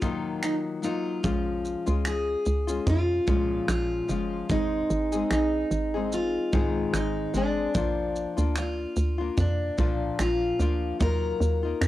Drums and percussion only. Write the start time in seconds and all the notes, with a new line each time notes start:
0.02 kick, shaker
0.43 finger snap, shaker
0.83 shaker
1.24 kick, shaker
1.65 shaker
1.87 shaker
2.05 finger snap, shaker
2.45 shaker
2.68 shaker
2.87 kick, shaker
3.27 kick, shaker
3.68 finger snap, shaker
4.09 shaker
4.50 kick, shaker
4.90 shaker
5.12 shaker
5.31 finger snap, shaker
5.71 shaker
6.12 shaker
6.53 kick, shaker
6.94 finger snap, shaker
7.34 shaker
7.75 kick, shaker
8.16 shaker
8.38 shaker
8.56 finger snap, shaker
8.96 shaker
9.38 kick, shaker
9.78 kick, shaker
10.19 finger snap, shaker
10.60 shaker
11.01 kick, shaker
11.42 shaker
11.81 finger snap, shaker